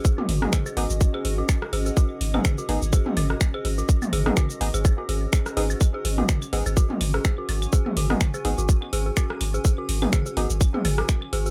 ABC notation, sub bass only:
X:1
M:4/4
L:1/16
Q:"Swing 16ths" 1/4=125
K:G#m
V:1 name="Sub bass" clef=bass
z2 G,,, z3 G,,, G,,, z2 G,,, z3 G,,, z | z2 G,,, z3 G,,, G,,, z2 G,,, z3 G,,, z | z2 G,,, z3 G,,, G,,, z2 G,,, z3 G,,, z | z2 G,,, z3 G,,, G,,, z2 G,,, z3 G,,, z |
z2 G,,, z3 G,,, G,,, z2 G,,, z3 G,,, z | z2 G,,, z3 G,,, G,,, z2 G,,, z3 G,,, z |]